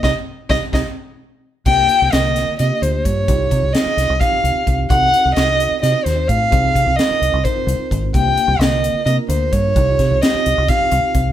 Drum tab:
CC |-------|x------|-------|-------|
HH |-------|-xxxxxx|xxxxxxx|xxxxxxx|
SD |o-oo---|--oo---|--ooo--|--o-oo-|
BD |o-oo---|o-----o|oo--o-o|o-----o|

CC |-------|-------|-------|
HH |xxxxxxx|xxxxxxx|xxxxxxx|
SD |--o----|--o----|-oo-o--|
BD |oo--o-o|o-----o|oo--o-o|